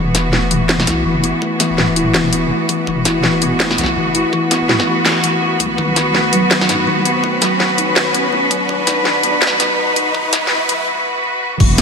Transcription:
Already playing: wobble bass E1, cello section E3 B3 F#4, riser
0.02 mid tom
0.04 mid tom
0.15 kalimba B3, snare, closed hi-hat
0.33 kalimba A3, snare
0.51 kalimba E3, closed hi-hat
0.69 kalimba E3, snare
0.80 snare
0.87 wobble bass B1, kalimba E4, snare, closed hi-hat
1.05 wobble bass F#1, kalimba E3
1.24 kalimba B3, closed hi-hat
1.42 kalimba A3, kick
1.60 kalimba E3, snare, closed hi-hat
1.71 wobble bass D1
1.78 kalimba E3, snare
1.96 kalimba E4, closed hi-hat
2.14 wobble bass E1, kalimba E3, snare
2.33 kalimba B3, closed hi-hat
2.51 kalimba A3
2.69 kalimba E3, kick, closed hi-hat
2.87 wobble bass E1, kalimba E3, kick
3.05 kalimba E4, snare, closed hi-hat
3.24 kalimba E3, snare
3.42 kalimba B3, closed hi-hat
3.60 kalimba A3, snare
3.71 snare
3.78 wobble bass B1, kalimba E3, snare, closed hi-hat
3.81 snare
3.84 snare
3.86 snare
3.96 wobble bass F#1, kalimba E3
4.15 kalimba E4, closed hi-hat
4.33 kalimba E3, kick
4.51 kalimba B3, snare, closed hi-hat
4.62 wobble bass D1
4.69 kalimba A3, snare
4.80 snare
4.87 kalimba E3
5.06 kalimba E3, snare
5.24 kalimba E3, closed hi-hat
5.42 kalimba B3
5.60 wobble bass B1, kalimba A3, kick, closed hi-hat
5.78 wobble bass B1, kalimba D#3, cello section B4, kick
5.96 kalimba B3, snare, closed hi-hat
6.15 kalimba A3, snare
6.33 kalimba F#3, closed hi-hat
6.51 kalimba D#3, snare
6.61 snare
6.69 wobble bass F#2, kalimba D#4, snare, closed hi-hat
6.87 wobble bass C2, kalimba D#3
7.05 kalimba B3, closed hi-hat
7.23 kalimba A3, kick
7.42 kalimba F#3, snare, closed hi-hat
7.52 wobble bass A1
7.60 kalimba D#3, snare
7.78 kalimba D#4, closed hi-hat
7.96 wobble bass B1, kalimba D#3, snare
8.14 kalimba B3, closed hi-hat
8.33 kalimba A3
8.51 kalimba F#3, kick, closed hi-hat
8.69 wobble bass B1, kalimba D#3, kick
8.87 kalimba D#4, snare, closed hi-hat
9.05 kalimba D#3, snare
9.23 kalimba B3, closed hi-hat
9.42 kalimba A3, snare
9.47 snare
9.60 wobble bass F#2, kalimba F#3, snare, closed hi-hat
9.78 wobble bass C2, kalimba D#3
9.96 kalimba D#4, closed hi-hat
10.14 kalimba D#3, kick
10.33 kalimba B3, snare, closed hi-hat
10.43 wobble bass A1, snare
10.51 kalimba A3
10.69 kalimba F#3, closed hi-hat
11.60 wobble bass E1, cello section E3 B3 F#4, kalimba E3, kick, crash, sub drop
11.78 kalimba B3, snare, closed hi-hat

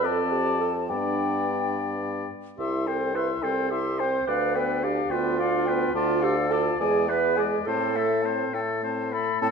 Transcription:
0.03 bassoon F2, french horn C4, clarinet A4, oboe D5, flute A5
0.31 clarinet G4
0.60 clarinet A4
0.88 bassoon G2, french horn B3, clarinet D4, oboe D5, flute G5
2.58 bassoon C2, french horn E4, clarinet G4, oboe E5, flute C6
2.87 french horn C4, clarinet A4, oboe C5, flute G5
3.14 french horn E4, clarinet B4, oboe E5, flute C6
3.42 bassoon C2, french horn C4, clarinet A4, oboe C5, flute G5
3.70 french horn E4, clarinet G4, oboe E5, flute C6
3.99 french horn C4, oboe C5, clarinet C5, flute G5
4.27 bassoon D2, french horn D4, clarinet B4, oboe D5, flute F5
4.55 french horn B3, clarinet A4, oboe B4, flute G5
4.83 french horn D4, clarinet G4, oboe D5, flute F5
5.10 bassoon D2, french horn B3, clarinet F4, oboe B4, flute G5
5.38 french horn D4, oboe D5, flute F5
5.66 french horn B3, oboe B4, flute G5
5.94 bassoon D2, clarinet F4, french horn F4, oboe D5, flute A5
6.21 french horn D4, clarinet G4, oboe A4, flute F5
6.51 french horn F4, clarinet A4, oboe D5, flute A5
6.79 bassoon E2, french horn G#3, clarinet G#4, oboe D5, flute G#5
7.08 french horn B3, clarinet B4, oboe B4, flute E5
7.36 french horn G#3, clarinet G#4, oboe D5, flute G#5
7.52 clarinet G#4
7.65 bassoon A2, french horn C4, clarinet A4, oboe C5, flute A5
7.96 french horn A3, oboe A4, flute E5
8.22 french horn C4, oboe C5, flute A5
8.53 bassoon A2, french horn A3, oboe A4, flute G5
8.83 french horn C4, oboe C5, flute A5
9.12 french horn A3, oboe A4, flute B5
9.41 bassoon A2, clarinet C4, oboe A4, flute A5

